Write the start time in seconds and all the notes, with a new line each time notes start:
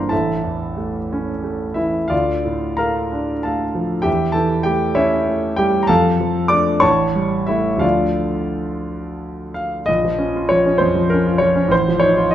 Already playing: G1 E3 A#3 D4 A#4 C5 A#5 C6
0.09 A1 A4 E5 A5
0.43 E2
0.77 A3
1.13 C#4
1.43 A3
1.74 E3 E4 E5
2.08 D2 F4 D5 F5
2.44 A2
2.77 A3 A#4 F5 A#5
3.12 D4
3.43 A3 A4 F5 A5
3.75 F3
4.02 E2 G4 E5 G5
4.32 E3 A4 A5
4.63 A3 G4 G5
4.95 C#4 E4 C#5 E5
5.27 A3
5.56 G3 G4 G5
5.83 A#5
5.87 F2 A4 F5 A5
6.20 F3
6.48 A3 D4 D5 D6
6.80 A1 C#5 A5 C#6
7.15 G3
7.47 A3 E4 E5
7.77 D2 F3 A3 D4 F5
7.81 F4 D5
9.54 F5
9.86 A#1 D#5
10.04 F3
10.18 C#4
10.36 F4
10.49 F3 C#5
10.66 C#4
10.78 F2 C5
10.96 F3
11.10 C#4 A#4
11.27 F4
11.38 F3 C#5
11.56 C#4
11.67 A1 C5
11.88 F3
12.00 D#4 C#5
12.17 F4
12.31 D#5